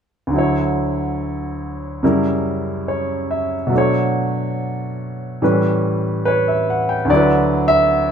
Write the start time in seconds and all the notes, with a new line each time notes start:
0.27 D2 D3
0.33 F#3 E4
0.38 C#5
2.03 F#2 C#3 G3 E4 A#4
2.88 C#5
3.31 E5
3.67 B2 F#3
3.72 A3 D4
3.78 C#5
5.42 A2 E3 G3 C#4 B4
6.25 B4 C#5
6.48 E5
6.70 F#5
6.89 G5
7.05 D2 D3
7.10 F#3 E4 D5
7.16 B4
7.68 E5